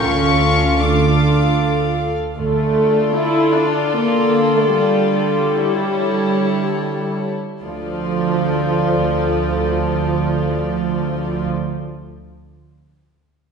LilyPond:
<<
  \new Staff \with { instrumentName = "Violin section" } { \time 3/4 \key d \minor \tempo 4 = 62 cis'''4 d'''4. r8 | d''2.~ | d''4 cis''4. r8 | d''2.~ |
d''2. | }
  \new Staff \with { instrumentName = "Violin section" } { \time 3/4 \key d \minor << { f''4 f''4. r8 | a'2.~ | a'2~ a'8 r8 | a'2.~ |
a'2. | } \\ { a'4 a'4. r8 | f'2.~ | f'4 e'4. r8 | f'2.~ |
f'2. | } >> }
  \new Staff \with { instrumentName = "Viola section" } { \time 3/4 \key d \minor f'2~ f'8 r8 | a4 e'8 d'8 bes8. a16 | g2~ g8 r8 | f2.~ |
f2. | }
  \new Staff \with { instrumentName = "Cello section" } { \clef bass \time 3/4 \key d \minor cis'4 d'4. r8 | d2.~ | d2~ d8 r8 | d,2.~ |
d,2. | }
  \new Staff \with { instrumentName = "Double bass section" } { \clef bass \time 3/4 \key d \minor d,2~ d,8 r8 | d,4 r2 | r2. | d,2.~ |
d,2. | }
>>